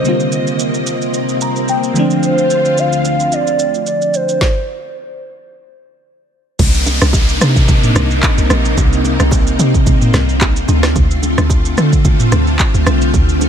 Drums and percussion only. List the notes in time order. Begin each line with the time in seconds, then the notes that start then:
0.05 shaker
0.20 shaker
0.32 shaker
0.47 shaker
0.59 shaker
0.74 shaker
0.87 shaker
1.02 shaker
1.14 shaker
1.29 shaker
1.41 shaker
1.56 shaker
1.68 shaker
1.83 shaker
1.96 shaker
2.10 shaker
2.23 shaker
2.38 shaker
2.50 shaker
2.65 shaker
2.78 shaker
2.93 shaker
3.05 shaker
3.20 shaker
3.32 shaker
3.47 shaker
3.59 shaker
3.74 shaker
3.86 shaker
4.02 shaker
4.14 shaker
4.29 shaker
4.41 kick, snare
6.59 kick, crash, low conga, shaker
6.74 shaker
6.86 low bongo, shaker
7.02 cross-stick, low bongo, shaker
7.13 kick, high bongo, shaker
7.29 shaker
7.41 cross-stick, shaker
7.56 kick, shaker
7.68 kick, low conga, shaker
7.83 mid tom, shaker
7.96 cross-stick, low bongo, low conga, shaker
8.11 shaker
8.23 kick, clap, high bongo, shaker
8.38 shaker
8.50 cross-stick, low bongo, shaker
8.65 shaker
8.77 kick, low conga, shaker
8.93 shaker
9.04 low bongo, shaker
9.20 cross-stick, low bongo, shaker
9.31 kick, high bongo, shaker
9.47 shaker
9.59 shaker
9.74 kick, shaker
9.87 kick, low conga, shaker
10.02 mid tom, shaker
10.14 cross-stick, snare, low bongo, low conga, shaker
10.29 shaker
10.41 kick, clap, high bongo, shaker
10.56 shaker
10.68 low bongo, shaker
10.83 cross-stick, snare, shaker
10.96 kick, low conga, shaker
11.11 shaker
11.23 low bongo, shaker
11.38 cross-stick, low bongo, shaker
11.49 kick, high bongo, shaker
11.65 shaker
11.78 cross-stick, shaker
11.93 kick, shaker
12.05 kick, low conga, shaker
12.20 mid tom, shaker
12.32 cross-stick, low bongo, low conga, shaker
12.47 shaker
12.59 kick, clap, high bongo, shaker
12.74 shaker
12.86 cross-stick, low bongo, shaker
13.01 shaker
13.14 kick, low conga, shaker
13.29 shaker
13.41 low bongo, shaker